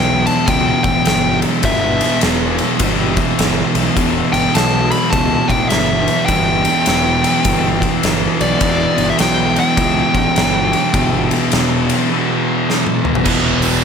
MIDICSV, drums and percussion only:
0, 0, Header, 1, 2, 480
1, 0, Start_track
1, 0, Key_signature, 1, "minor"
1, 0, Tempo, 581395
1, 1352, Time_signature, 4, 2, 24, 8
1, 11427, End_track
2, 0, Start_track
2, 0, Title_t, "Drums"
2, 220, Note_on_c, 9, 51, 69
2, 303, Note_off_c, 9, 51, 0
2, 394, Note_on_c, 9, 51, 91
2, 395, Note_on_c, 9, 36, 114
2, 476, Note_off_c, 9, 51, 0
2, 477, Note_off_c, 9, 36, 0
2, 693, Note_on_c, 9, 51, 61
2, 696, Note_on_c, 9, 36, 80
2, 775, Note_off_c, 9, 51, 0
2, 779, Note_off_c, 9, 36, 0
2, 870, Note_on_c, 9, 51, 89
2, 884, Note_on_c, 9, 38, 102
2, 953, Note_off_c, 9, 51, 0
2, 967, Note_off_c, 9, 38, 0
2, 1173, Note_on_c, 9, 51, 66
2, 1256, Note_off_c, 9, 51, 0
2, 1344, Note_on_c, 9, 51, 89
2, 1352, Note_on_c, 9, 36, 109
2, 1426, Note_off_c, 9, 51, 0
2, 1434, Note_off_c, 9, 36, 0
2, 1657, Note_on_c, 9, 51, 78
2, 1740, Note_off_c, 9, 51, 0
2, 1826, Note_on_c, 9, 51, 98
2, 1841, Note_on_c, 9, 38, 115
2, 1909, Note_off_c, 9, 51, 0
2, 1923, Note_off_c, 9, 38, 0
2, 2134, Note_on_c, 9, 51, 68
2, 2217, Note_off_c, 9, 51, 0
2, 2307, Note_on_c, 9, 51, 100
2, 2312, Note_on_c, 9, 36, 106
2, 2390, Note_off_c, 9, 51, 0
2, 2395, Note_off_c, 9, 36, 0
2, 2615, Note_on_c, 9, 51, 70
2, 2618, Note_on_c, 9, 36, 82
2, 2698, Note_off_c, 9, 51, 0
2, 2700, Note_off_c, 9, 36, 0
2, 2797, Note_on_c, 9, 51, 92
2, 2811, Note_on_c, 9, 38, 105
2, 2879, Note_off_c, 9, 51, 0
2, 2893, Note_off_c, 9, 38, 0
2, 3096, Note_on_c, 9, 51, 73
2, 3178, Note_off_c, 9, 51, 0
2, 3274, Note_on_c, 9, 36, 104
2, 3275, Note_on_c, 9, 51, 87
2, 3357, Note_off_c, 9, 36, 0
2, 3358, Note_off_c, 9, 51, 0
2, 3581, Note_on_c, 9, 51, 68
2, 3664, Note_off_c, 9, 51, 0
2, 3756, Note_on_c, 9, 51, 91
2, 3770, Note_on_c, 9, 38, 115
2, 3838, Note_off_c, 9, 51, 0
2, 3852, Note_off_c, 9, 38, 0
2, 4058, Note_on_c, 9, 51, 68
2, 4140, Note_off_c, 9, 51, 0
2, 4233, Note_on_c, 9, 36, 124
2, 4234, Note_on_c, 9, 51, 90
2, 4315, Note_off_c, 9, 36, 0
2, 4316, Note_off_c, 9, 51, 0
2, 4537, Note_on_c, 9, 36, 81
2, 4540, Note_on_c, 9, 51, 65
2, 4619, Note_off_c, 9, 36, 0
2, 4623, Note_off_c, 9, 51, 0
2, 4708, Note_on_c, 9, 51, 89
2, 4722, Note_on_c, 9, 38, 109
2, 4791, Note_off_c, 9, 51, 0
2, 4805, Note_off_c, 9, 38, 0
2, 5017, Note_on_c, 9, 51, 61
2, 5099, Note_off_c, 9, 51, 0
2, 5187, Note_on_c, 9, 51, 90
2, 5190, Note_on_c, 9, 36, 102
2, 5270, Note_off_c, 9, 51, 0
2, 5273, Note_off_c, 9, 36, 0
2, 5488, Note_on_c, 9, 51, 70
2, 5571, Note_off_c, 9, 51, 0
2, 5662, Note_on_c, 9, 51, 94
2, 5676, Note_on_c, 9, 38, 112
2, 5745, Note_off_c, 9, 51, 0
2, 5759, Note_off_c, 9, 38, 0
2, 5978, Note_on_c, 9, 51, 79
2, 6061, Note_off_c, 9, 51, 0
2, 6148, Note_on_c, 9, 51, 100
2, 6152, Note_on_c, 9, 36, 114
2, 6230, Note_off_c, 9, 51, 0
2, 6234, Note_off_c, 9, 36, 0
2, 6456, Note_on_c, 9, 36, 83
2, 6461, Note_on_c, 9, 51, 72
2, 6539, Note_off_c, 9, 36, 0
2, 6543, Note_off_c, 9, 51, 0
2, 6632, Note_on_c, 9, 51, 100
2, 6646, Note_on_c, 9, 38, 111
2, 6714, Note_off_c, 9, 51, 0
2, 6728, Note_off_c, 9, 38, 0
2, 6940, Note_on_c, 9, 51, 75
2, 7023, Note_off_c, 9, 51, 0
2, 7105, Note_on_c, 9, 51, 101
2, 7109, Note_on_c, 9, 36, 107
2, 7188, Note_off_c, 9, 51, 0
2, 7192, Note_off_c, 9, 36, 0
2, 7413, Note_on_c, 9, 51, 71
2, 7496, Note_off_c, 9, 51, 0
2, 7584, Note_on_c, 9, 51, 103
2, 7598, Note_on_c, 9, 38, 118
2, 7667, Note_off_c, 9, 51, 0
2, 7681, Note_off_c, 9, 38, 0
2, 7894, Note_on_c, 9, 51, 70
2, 7977, Note_off_c, 9, 51, 0
2, 8069, Note_on_c, 9, 51, 93
2, 8070, Note_on_c, 9, 36, 108
2, 8152, Note_off_c, 9, 36, 0
2, 8152, Note_off_c, 9, 51, 0
2, 8376, Note_on_c, 9, 36, 91
2, 8377, Note_on_c, 9, 51, 63
2, 8459, Note_off_c, 9, 36, 0
2, 8460, Note_off_c, 9, 51, 0
2, 8553, Note_on_c, 9, 51, 77
2, 8568, Note_on_c, 9, 38, 112
2, 8636, Note_off_c, 9, 51, 0
2, 8650, Note_off_c, 9, 38, 0
2, 8860, Note_on_c, 9, 51, 63
2, 8942, Note_off_c, 9, 51, 0
2, 9031, Note_on_c, 9, 36, 110
2, 9031, Note_on_c, 9, 51, 92
2, 9113, Note_off_c, 9, 36, 0
2, 9113, Note_off_c, 9, 51, 0
2, 9338, Note_on_c, 9, 51, 71
2, 9420, Note_off_c, 9, 51, 0
2, 9508, Note_on_c, 9, 51, 91
2, 9522, Note_on_c, 9, 38, 115
2, 9590, Note_off_c, 9, 51, 0
2, 9604, Note_off_c, 9, 38, 0
2, 9820, Note_on_c, 9, 51, 77
2, 9903, Note_off_c, 9, 51, 0
2, 10483, Note_on_c, 9, 38, 58
2, 10566, Note_off_c, 9, 38, 0
2, 10622, Note_on_c, 9, 48, 65
2, 10705, Note_off_c, 9, 48, 0
2, 10773, Note_on_c, 9, 45, 84
2, 10856, Note_off_c, 9, 45, 0
2, 10859, Note_on_c, 9, 43, 91
2, 10942, Note_off_c, 9, 43, 0
2, 10942, Note_on_c, 9, 49, 116
2, 10948, Note_on_c, 9, 36, 109
2, 11025, Note_off_c, 9, 49, 0
2, 11030, Note_off_c, 9, 36, 0
2, 11245, Note_on_c, 9, 46, 64
2, 11328, Note_off_c, 9, 46, 0
2, 11427, End_track
0, 0, End_of_file